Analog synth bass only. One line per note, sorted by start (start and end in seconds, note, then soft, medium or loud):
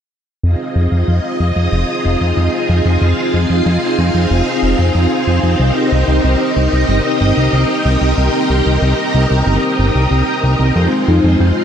0.43 0.56 F2 medium
0.76 0.88 F2 medium
0.92 1.04 F2 medium
1.08 1.20 F2 medium
1.40 1.52 F2 medium
1.56 1.68 F2 medium
1.72 1.84 F1 medium
2.05 2.17 F1 medium
2.21 2.33 F2 medium
2.37 2.49 F2 loud
2.69 2.81 F2 medium
2.85 2.97 F2 medium
3.02 3.14 F2 loud
3.34 3.46 F2 medium
3.50 3.62 F2 medium
3.66 3.78 F2 medium
3.98 4.10 F2 medium
4.14 4.27 F2 medium
4.31 4.43 F1 loud
4.63 4.75 F1 medium
4.79 4.91 F2 medium
4.95 5.07 F2 loud
5.27 5.39 F2 medium
5.43 5.56 F2 medium
5.60 5.72 C2 medium
5.92 6.04 C2 medium
6.08 6.20 C2 medium
6.24 6.36 C2 loud
6.56 6.68 C2 medium
6.72 6.85 C2 medium
6.89 7.01 G1 loud
7.21 7.33 G1 medium
7.37 7.49 C2 medium
7.53 7.65 C2 loud
7.85 7.97 C2 medium
8.01 8.14 C2 medium
8.18 8.30 C2 loud
8.50 8.62 C2 medium
8.66 8.78 C2 medium
8.82 8.94 C2 loud
9.14 9.26 C2 medium
9.31 9.43 C2 medium
9.47 9.59 G1 loud
9.79 9.91 G1 medium
9.95 10.07 C2 medium
10.11 10.23 C2 medium
10.43 10.56 C2 medium
10.60 10.72 C2 medium
10.76 10.88 F2 loud
11.08 11.20 F2 medium
11.24 11.36 F2 medium
11.40 11.52 F2 loud